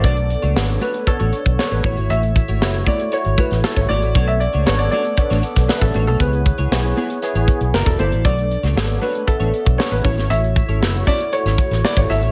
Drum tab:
HH |xxxx-xxxxxxx-xxx|xxxx-xxxxxxx-xxx|xxxx-xxxxxxx-xxx|xxxx-xxxxxxx-xxx|
SD |----o-------o---|----o------oo---|----o----o-oo---|----o-------o---|
BD |o-------o--o--o-|--o---o---o--o--|o-------o--o-o--|o-o-------o--o--|

HH |xxxx-xoxxxxx-xox|xxxx-xoxxxxx-xox|
SD |---oo-------o--o|----o----o-oo---|
BD |o-------o--o--o-|--o---o---o--o--|